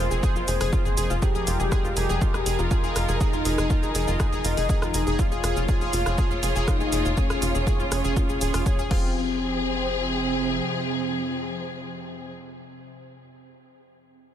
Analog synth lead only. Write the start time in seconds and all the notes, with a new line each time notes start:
Already playing: C5
1.22 G4
2.71 F4
3.21 D#4
5.19 F4
6.68 D#4
7.17 C#4
8.91 C4